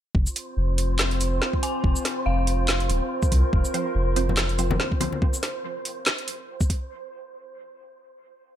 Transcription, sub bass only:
0.15 0.26 F1 loud
0.57 1.40 F1 medium
1.84 1.95 F1 loud
2.26 2.88 F1 medium
2.90 3.01 D#1 loud
3.32 3.43 C2 medium
3.53 3.64 F1 loud
3.95 4.78 F1 medium

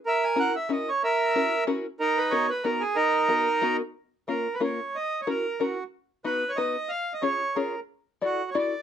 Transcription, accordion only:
0.06 0.53 A#4 medium
0.06 0.25 E5 loud
0.25 0.39 G#5 medium
0.40 0.55 F#5 loud
0.56 0.71 E5 medium
0.72 0.90 D#5 medium
0.89 1.03 C#5 medium
1.04 1.64 A#4 medium
1.04 1.64 E5 loud
2.00 2.47 D#4 medium
2.00 2.18 A#4 loud
2.17 2.33 B4 loud
2.31 2.50 C#5 loud
2.50 2.65 B4 medium
2.64 2.82 A#4 medium
2.81 2.97 G#4 medium
2.96 3.77 D#4 medium
2.96 3.76 A#4 loud
4.29 4.55 A#4 medium
4.54 4.61 B4 medium
4.64 4.96 C#5 medium
4.95 5.21 D#5 medium
5.21 5.28 C#5 medium
5.29 5.62 A#4 medium
5.61 5.84 F#4 medium
6.25 6.51 B4 medium
6.49 6.57 C#5 medium
6.56 6.91 D#5 medium
6.89 7.13 F5 loud
7.13 7.22 D#5 medium
7.22 7.57 C#5 medium
7.56 7.80 A#4 medium
8.25 8.50 F#4 medium
8.51 8.57 C#5 medium
8.58 8.82 D5 medium

